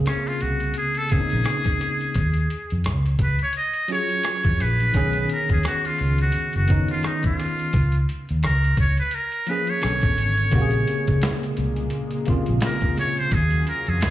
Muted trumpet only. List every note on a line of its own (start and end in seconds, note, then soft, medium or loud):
0.08 0.29 C#4 medium
0.28 0.43 F4 medium
0.42 0.76 F#4 medium
0.78 0.99 G#4 medium
0.97 1.13 A4 medium
1.12 2.86 G#4 medium
3.23 3.40 B4 medium
3.43 3.55 C#5 medium
3.57 3.88 D#5 loud
3.92 4.63 C#5 loud
4.62 5.30 B4 loud
5.32 5.50 A#4 medium
5.52 5.64 G#4 medium
5.66 5.88 F#4 medium
5.87 6.20 F4 medium
6.22 6.53 F#4 medium
6.56 6.88 F#4 medium
6.91 7.07 F4 medium
7.05 7.25 D#4 medium
7.25 7.97 F4 medium
8.45 8.77 A#4 medium
8.80 8.98 C#5 medium
9.00 9.16 B4 medium
9.15 9.51 A#4 medium
9.50 9.71 B4 medium
9.70 11.43 C#5 loud
12.65 12.96 A#4 medium
12.99 13.21 C#5 loud
13.19 13.35 C5 loud
13.34 13.68 G#4 medium
13.69 13.91 A#4 medium
13.89 14.10 G#4 medium